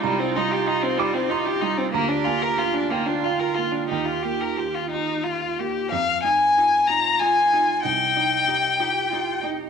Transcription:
<<
  \new Staff \with { instrumentName = "Cello" } { \time 6/8 \key f \dorian \tempo 4. = 62 f'2. | g'4. f'4. | g'2~ g'16 r8. | r4. f'4. |
ees'4. g'8 f'8 ees'8 | }
  \new Staff \with { instrumentName = "Felt piano" } { \time 6/8 \key f \dorian << { bes''8 c'''4 d'''8 c'''4 | bes''8 aes''4 g''8 f''4 | g''4. r4. | r2. |
r2. | } \\ { c,8 g8 g'8 f'8 g'8 g8 | d,8 bes8 f'8 ees'8 f'8 bes8 | ees,8 bes8 f'8 ees'8 f'8 bes8 | f,8 ees'8 f'8 ees'8 f'8 ees'8 |
c,8 ees'8 g'8 f'8 g'8 ees'8 | } >> }
  \new Staff \with { instrumentName = "Violin" } { \time 6/8 \key f \dorian g16 c'16 ees'16 g'16 ees'16 c'16 g16 c'16 ees'16 g'16 ees'16 c'16 | bes16 d'16 f'16 bes'16 f'16 d'16 bes16 d'16 f'16 bes'16 f'16 d'16 | ees'16 f'16 g'16 bes'16 g'16 f'16 ees'8 f'8 g'8 | f''8 aes''4 bes''8 aes''4 |
g''2~ g''8 r8 | }
  \new Staff \with { instrumentName = "Viola" } { \time 6/8 \key f \dorian ees'2. | f'2.~ | f'2~ f'8 r8 | ees'8 ees'8 ees'8 ees'8 ees'8 ees'8 |
ees'8 ees'8 ees'8 ees'8 ees'8 ees'8 | }
>>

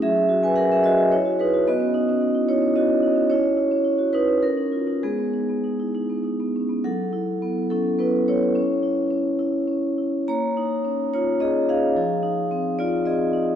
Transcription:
\new Staff \with { instrumentName = "Vibraphone" } { \time 3/4 \key gis \minor \tempo 4 = 108 << { <gis' e''>8. <b' gis''>16 <ais' fis''>16 <gis' e''>16 <fis' dis''>8 <e' cis''>8 <dis' b'>8 | <fis' dis''>4. <e' cis''>8 <fis' dis''>4 | <e' cis''>4. <dis' b'>8 <cis' ais'>4 | <b gis'>2~ <b gis'>8 r8 |
\key cis \phrygian <a' fis''>4. <cis' a'>8 <e' b'>8 <e' cis''>8~ | <e' cis''>2. | <cis'' ais''>4. <eis' cis''>8 <gis' dis''>8 <gis' eis''>8~ | <gis' eis''>4. <f' d''>8 <aes' ees''>4 | } \\ { fis16 cis'16 fis'16 cis'16 gis'16 ais'16 gis'16 fis'16 r16 fis'16 gis'16 fis'16 | b16 cis'16 dis'16 cis'16 dis'16 e'16 dis'16 cis'16 dis'16 cis'16 dis'16 cis'16 | cis'16 cis'16 e'16 cis'16 e'16 fis'16 e'16 cis'16 r16 dis'16 eis'16 dis'16 | gis16 b16 dis'16 b16 dis'16 e'16 dis'16 b16 dis'16 b16 cis'16 b16 |
fis8 e'8 b8 e'8 b8. r16 | cis'8 e'8 cis'8 e'8 cis'8 e'8 | ais8 dis'8 cis'8 dis'8 cis'8 dis'8 | f8 ees'8 c'8 ees'8 c'8 ees'8 | } >> }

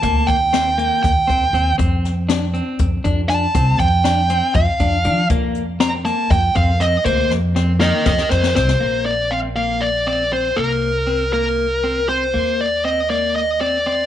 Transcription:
<<
  \new Staff \with { instrumentName = "Lead electric guitar" } { \time 7/8 \key ees \lydian \tempo 4 = 120 << { a''8 g''4. g''4. | r2. a''8~ | a''8 g''4. f''4. | r4 bes''8 a''8 g''8 f''8 ees''8 |
c''8 r4 ees''8 ees''8 c''4 | r2. r8 | r2. r8 | r2. r8 | } \\ { r2. r8 | r2. r8 | r2. r8 | r2. r8 |
r4. bes'4. c''8~ | c''8 d''8 f''8 f''8 d''8 d''8 c''8 | bes'4. bes'4. c''8~ | c''8 d''8 ees''8 d''8 ees''8 d''8 d''8 | } >> }
  \new Staff \with { instrumentName = "Clean electric guitar" } { \time 7/8 \key ees \lydian bes4 c'8 bes4 c'8 c'8 | c'4 d'8 c'4 d'8 d'8 | c'4 d'8 c'4 d'8 d'8 | bes4 c'8 bes4 c'8 c'8 |
bes4 c'8 bes4 c'8 c'8 | bes4 c'8 bes4 c'8 c'8 | bes4 c'8 bes4 c'8 c'8 | bes4 c'8 bes4 c'8 c'8 | }
  \new Staff \with { instrumentName = "Upright bass" } { \clef bass \time 7/8 \key ees \lydian d,8 ees,4. ees,16 r16 ees,8 ees,8 | f,2 f,8 f,4 | c,8 f,4. f,16 r16 f,8 f8 | f,2 f,8 f,4 |
d,8 f,4. f,16 r16 f,8 c,8 | bes,,2.~ bes,,8 | c,2.~ c,8 | ees,2.~ ees,8 | }
  \new DrumStaff \with { instrumentName = "Drums" } \drummode { \time 7/8 <hh bd>8 <hh bd>8 <hh sn>8 hh8 <hh bd sn>8 <hh bd>8 hh8 | <hh bd>8 <hh sn>8 <hh sn>8 hh8 <hh bd>8 <hh bd>8 <hh sn>8 | <hh bd>8 <hh bd>8 <hh sn>8 <hh sn>8 <hh bd>8 <hh bd>8 hh8 | <hh bd>8 hh8 <hh sn>8 <hh sn>8 <hh bd sn>8 <hh bd>8 <hh sn>8 |
<hh bd>8 sn8 sn8 sn8 <bd sn>16 sn16 sn16 sn16 sn16 sn16 | r4 r4 r4. | r4 r4 r4. | r4 r4 r4. | }
>>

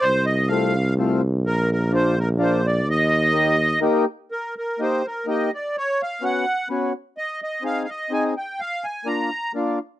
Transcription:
<<
  \new Staff \with { instrumentName = "Accordion" } { \time 3/4 \key ees \major \tempo 4 = 126 c''8 ees''8 f''4 r4 | bes'8 bes'8 c''8 bes'8 c''8 d''8 | ees''2 r4 | bes'8 bes'8 c''8 bes'8 ees''8 d''8 |
cis''8 f''8 fis''4 r4 | ees''8 ees''8 f''16. f''32 ees''8 aes''8 g''8 | f''8 aes''8 bes''4 r4 | }
  \new Staff \with { instrumentName = "Accordion" } { \time 3/4 \key ees \major r4 <a c' f'>8 r8 <a c' f'>8 r8 | r4 <bes d' f'>8 r8 <bes d' f'>8 r8 | r4 <bes ees' g'>8 r8 <bes ees' g'>8 r8 | r4 <bes ees' g'>8 r8 <bes ees' g'>8 r8 |
r4 <b cis' fis'>8 r8 <b cis' fis'>8 r8 | r4 <c' ees' aes'>8 r8 <c' ees' aes'>8 r8 | r4 <bes d' f'>8 r8 <bes d' f'>8 r8 | }
  \new Staff \with { instrumentName = "Tuba" } { \clef bass \time 3/4 \key ees \major c,2. | bes,,2. | ees,2. | r2. |
r2. | r2. | r2. | }
>>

